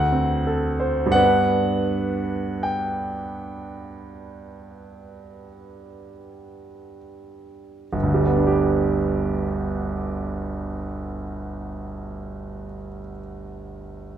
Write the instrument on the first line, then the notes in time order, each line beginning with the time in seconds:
grand piano
Already playing: D2 F#5
0.12 C4
0.47 A4
0.80 C5
1.06 G2
1.12 B3 D4 B4 F#5
2.63 G5
7.93 G1
8.03 D2
8.14 G3
8.25 B3
8.37 D4
8.47 G4